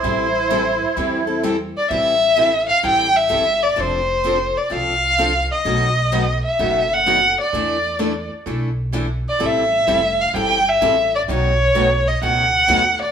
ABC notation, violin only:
X:1
M:4/4
L:1/8
Q:"Swing" 1/4=128
K:Am
V:1 name="Violin"
c6 z d | e3 f g e2 d | c3 d f3 ^d- | ^d3 e2 ^f2 =d- |
d3 z4 d | e3 f g e2 d | ^c3 ^d ^f3 =d |]